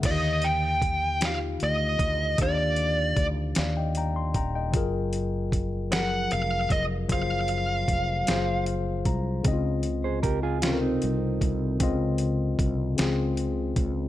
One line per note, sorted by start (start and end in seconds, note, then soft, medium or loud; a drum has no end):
0.02 1.57 D#2 loud
0.02 0.88 D3 medium
0.02 0.88 D#3 medium
0.02 0.11 F4 medium
0.02 0.45 D#5 medium
0.02 kick loud
0.02 closed hi-hat medium
0.02 crash medium
0.06 0.90 F5 medium
0.11 0.92 G4 medium
0.42 1.24 G5 loud
0.42 closed hi-hat medium
0.82 kick loud
0.82 closed hi-hat medium
1.20 2.06 D#4 medium
1.20 2.07 F4 medium
1.20 2.08 G4 medium
1.20 snare loud
1.20 closed hi-hat medium
1.25 1.35 F5 medium
1.25 2.08 F5 medium
1.60 1.97 D2 medium
1.60 2.36 D#5 medium
1.60 closed hi-hat soft
1.99 2.35 D2 medium
1.99 kick medium
1.99 closed hi-hat soft
2.38 3.13 D#2 loud
2.38 3.24 D#3 medium
2.38 3.24 D4 medium
2.38 3.25 G4 medium
2.38 kick loud
2.38 closed hi-hat medium
2.42 3.25 D5 medium
2.42 3.26 F5 medium
2.76 closed hi-hat soft
3.17 3.53 D2 medium
3.17 kick medium
3.17 closed hi-hat soft
3.55 4.32 D#2 medium
3.55 3.76 D5 medium
3.55 3.76 F5 medium
3.55 snare medium
3.55 closed hi-hat medium
3.77 3.96 D#5 medium
3.77 3.95 G5 medium
3.95 4.16 G5 medium
3.95 4.15 A#5 medium
3.95 closed hi-hat medium
4.16 4.34 C6 medium
4.34 4.74 D#1 medium
4.34 4.54 G5 medium
4.34 4.54 A#5 medium
4.34 kick medium
4.34 closed hi-hat soft
4.55 4.92 D#5 medium
4.55 4.92 G5 medium
4.72 6.27 F#1 loud
4.72 5.58 F#3 medium
4.72 5.59 F4 medium
4.72 5.60 G#4 medium
4.72 kick loud
4.72 closed hi-hat medium
4.77 5.61 A#4 medium
5.13 closed hi-hat medium
5.52 kick medium
5.52 closed hi-hat soft
5.91 6.77 F3 medium
5.91 6.76 F#3 medium
5.91 6.78 G#4 medium
5.91 6.33 F#5 loud
5.91 snare loud
5.91 closed hi-hat medium
5.95 6.79 A#4 medium
6.31 6.67 F1 loud
6.31 6.72 F5 loud
6.31 closed hi-hat medium
6.70 7.06 F1 medium
6.70 6.82 D#5 medium
6.70 kick medium
6.70 closed hi-hat soft
7.08 7.84 F#1 medium
7.08 7.94 F#3 medium
7.08 7.94 F4 medium
7.08 7.95 G#4 medium
7.08 kick loud
7.08 closed hi-hat medium
7.12 7.96 C5 medium
7.12 8.64 F5 loud
7.48 closed hi-hat soft
7.88 8.24 F1 medium
7.88 kick medium
7.88 closed hi-hat medium
8.27 9.03 F#1 medium
8.27 9.12 F#3 medium
8.27 9.13 F4 medium
8.27 9.13 G#4 medium
8.27 snare loud
8.27 closed hi-hat medium
8.31 9.14 C5 medium
8.66 9.03 F5 medium
8.66 closed hi-hat soft
9.05 9.41 C2 medium
9.05 9.42 A#5 medium
9.05 kick medium
9.05 closed hi-hat soft
9.43 10.98 C#2 loud
9.43 10.29 C#3 medium
9.43 10.30 C4 medium
9.43 9.52 D#4 medium
9.43 kick loud
9.43 closed hi-hat medium
9.48 10.31 D#5 loud
9.53 10.34 F4 medium
9.83 closed hi-hat medium
10.04 10.23 G#4 medium
10.04 10.22 C5 medium
10.23 10.42 G4 medium
10.23 10.42 A#4 medium
10.23 kick medium
10.23 closed hi-hat soft
10.43 10.61 F4 medium
10.43 10.62 G#4 medium
10.62 11.47 C3 medium
10.62 11.48 C4 medium
10.62 10.81 C#4 medium
10.62 10.81 F4 medium
10.62 11.49 F4 medium
10.62 snare loud
10.62 closed hi-hat medium
10.67 10.71 A4 medium
10.73 11.53 A#4 medium
10.81 11.96 C4 medium
10.81 11.95 D#4 medium
11.02 11.38 C2 medium
11.02 closed hi-hat soft
11.41 11.77 C2 loud
11.41 kick medium
11.41 closed hi-hat medium
11.79 12.55 C#2 loud
11.79 12.65 C#3 medium
11.79 12.65 C4 medium
11.79 12.66 F4 medium
11.79 kick loud
11.79 closed hi-hat medium
11.83 12.67 D#5 loud
12.18 closed hi-hat medium
12.59 12.94 C2 medium
12.59 kick medium
12.59 closed hi-hat soft
12.97 13.73 C#2 loud
12.97 13.82 C#3 medium
12.97 13.83 C4 medium
12.97 13.84 F4 medium
12.97 snare loud
12.97 closed hi-hat medium
13.01 13.84 G#4 medium
13.37 closed hi-hat medium
13.76 14.09 C#2 medium
13.76 kick medium
13.76 closed hi-hat medium